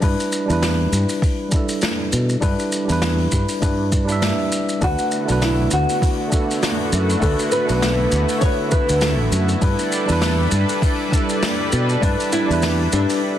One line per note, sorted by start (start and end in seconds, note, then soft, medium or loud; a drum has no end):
0.00 0.14 G2 medium
0.00 0.44 G3 medium
0.00 0.45 D4 medium
0.00 0.45 E4 medium
0.00 0.46 B4 medium
0.00 kick loud
0.00 open hi-hat medium
0.00 shaker medium
0.20 open hi-hat soft
0.20 shaker soft
0.32 shaker medium
0.46 0.86 E2 medium
0.46 1.47 G3 medium
0.46 1.49 D4 medium
0.50 1.50 E4 medium
0.50 1.51 B4 medium
0.50 open hi-hat soft
0.50 shaker soft
0.62 snare medium
0.62 open hi-hat medium
0.62 shaker medium
0.92 1.04 G2 medium
0.92 shaker medium
1.09 open hi-hat medium
1.09 shaker medium
1.22 kick loud
1.22 open hi-hat medium
1.22 shaker soft
1.49 2.37 G3 medium
1.49 2.39 D4 medium
1.49 kick loud
1.49 shaker medium
1.54 2.40 E4 medium
1.54 2.41 A4 medium
1.68 open hi-hat medium
1.68 shaker soft
1.82 snare loud
1.82 open hi-hat medium
1.82 shaker medium
2.13 2.35 B2 medium
2.13 shaker medium
2.29 shaker soft
2.40 2.54 G2 medium
2.40 2.84 G3 medium
2.40 2.85 D4 medium
2.40 2.85 E4 medium
2.40 2.86 B4 loud
2.40 kick loud
2.40 open hi-hat medium
2.40 shaker medium
2.59 open hi-hat soft
2.59 shaker soft
2.72 shaker medium
2.85 3.57 G3 medium
2.85 3.58 D4 medium
2.89 3.26 E2 medium
2.89 3.60 E4 medium
2.89 3.61 B4 medium
2.89 open hi-hat medium
2.89 shaker soft
3.02 snare medium
3.02 shaker medium
3.18 open hi-hat soft
3.32 3.44 G2 medium
3.32 kick medium
3.32 shaker medium
3.48 open hi-hat medium
3.48 shaker soft
3.61 4.31 G2 loud
3.61 4.04 G3 medium
3.61 4.06 D4 medium
3.61 4.06 E4 medium
3.61 4.07 B4 medium
3.61 kick loud
3.61 open hi-hat medium
3.61 shaker medium
3.92 kick medium
3.92 shaker medium
4.05 4.77 G3 medium
4.05 4.78 D4 medium
4.05 open hi-hat soft
4.05 shaker soft
4.10 4.79 E4 medium
4.10 4.81 E5 loud
4.22 snare medium
4.22 open hi-hat medium
4.22 shaker medium
4.38 open hi-hat soft
4.52 shaker medium
4.69 shaker soft
4.80 4.94 D2 loud
4.80 9.58 D3 medium
4.80 5.24 A3 medium
4.80 9.58 A3 medium
4.80 9.58 B3 medium
4.80 5.25 D4 medium
4.80 13.38 E4 medium
4.80 9.58 F#4 medium
4.80 5.25 F#4 medium
4.80 5.43 F#4 loud
4.80 5.26 B4 loud
4.80 kick loud
4.80 open hi-hat medium
4.80 shaker medium
4.98 open hi-hat soft
4.98 shaker soft
5.12 shaker medium
5.25 6.26 A3 medium
5.25 6.28 D4 medium
5.25 open hi-hat medium
5.25 shaker soft
5.29 5.66 B1 medium
5.29 6.30 F#4 medium
5.29 6.31 B4 medium
5.42 5.73 E4 medium
5.42 snare medium
5.42 open hi-hat medium
5.42 shaker medium
5.71 5.84 D2 medium
5.71 6.89 F#4 medium
5.71 shaker medium
5.89 open hi-hat medium
5.89 shaker soft
6.02 kick loud
6.02 open hi-hat medium
6.02 shaker medium
6.28 7.17 A3 medium
6.28 7.18 D4 medium
6.32 7.19 F#4 medium
6.32 7.20 A4 medium
6.32 kick medium
6.32 shaker medium
6.50 open hi-hat soft
6.50 shaker soft
6.62 snare medium
6.62 open hi-hat medium
6.62 shaker medium
6.92 7.14 F#2 medium
6.92 shaker medium
7.10 shaker soft
7.20 7.34 D2 medium
7.20 7.64 A3 medium
7.20 7.65 D4 medium
7.20 7.65 F#4 medium
7.20 7.52 A4 medium
7.20 7.66 B4 loud
7.20 kick loud
7.20 open hi-hat medium
7.20 shaker soft
7.39 open hi-hat soft
7.39 shaker soft
7.52 8.41 B4 medium
7.52 shaker medium
7.65 8.37 A3 medium
7.65 8.38 D4 medium
7.65 open hi-hat medium
7.69 8.06 B1 medium
7.69 8.39 F#4 medium
7.69 8.40 B4 medium
7.69 shaker soft
7.82 snare medium
7.82 open hi-hat medium
7.82 shaker medium
8.12 8.24 D2 medium
8.12 shaker medium
8.29 open hi-hat medium
8.29 shaker soft
8.38 9.57 A3 medium
8.38 9.58 D4 medium
8.38 8.71 C#5 loud
8.38 open hi-hat medium
8.38 shaker medium
8.42 9.59 F#4 medium
8.42 9.61 B4 loud
8.42 kick loud
8.71 9.01 B4 medium
8.71 kick loud
8.71 shaker medium
8.88 9.19 D2 medium
8.88 open hi-hat soft
8.88 shaker medium
9.01 9.46 A4 medium
9.01 snare medium
9.01 open hi-hat medium
9.01 shaker medium
9.19 9.28 A1 medium
9.32 9.54 F#2 medium
9.32 shaker medium
9.49 shaker soft
9.60 9.74 G2 medium
9.60 10.04 G3 medium
9.60 13.38 G3 medium
9.60 10.05 D4 medium
9.60 13.38 D4 medium
9.60 10.05 E4 medium
9.60 13.38 A4 medium
9.60 13.38 B4 medium
9.60 10.06 B4 medium
9.60 kick loud
9.60 open hi-hat medium
9.60 shaker soft
9.78 open hi-hat soft
9.78 shaker soft
9.92 shaker medium
10.05 10.46 E2 medium
10.05 11.07 G3 medium
10.05 11.08 D4 medium
10.05 shaker soft
10.09 11.09 E4 medium
10.09 11.11 B4 loud
10.09 open hi-hat medium
10.22 snare medium
10.22 open hi-hat medium
10.22 shaker medium
10.51 10.64 G2 medium
10.51 shaker medium
10.69 open hi-hat medium
10.69 shaker soft
10.82 kick loud
10.82 open hi-hat medium
10.82 shaker soft
11.09 11.97 G3 medium
11.09 11.99 D4 medium
11.09 kick medium
11.13 12.00 E4 medium
11.13 12.01 A4 medium
11.13 shaker medium
11.29 open hi-hat soft
11.29 shaker soft
11.43 snare medium
11.43 open hi-hat medium
11.43 shaker medium
11.72 11.95 B2 medium
11.72 shaker medium
11.89 shaker soft
12.00 12.14 G2 loud
12.00 12.44 G3 loud
12.00 12.45 D4 medium
12.00 12.32 D4 loud
12.00 12.46 E4 medium
12.00 12.46 B4 loud
12.00 kick loud
12.00 open hi-hat medium
12.00 shaker medium
12.20 open hi-hat soft
12.20 shaker soft
12.32 12.93 E4 loud
12.32 shaker medium
12.46 12.86 E2 medium
12.46 13.18 G3 medium
12.46 13.19 D4 medium
12.51 13.20 E4 medium
12.51 13.21 B4 medium
12.51 open hi-hat medium
12.51 shaker soft
12.62 snare medium
12.62 open hi-hat medium
12.62 shaker medium
12.92 13.04 G2 medium
12.92 13.21 D4 medium
12.92 shaker medium
13.09 open hi-hat medium
13.09 shaker soft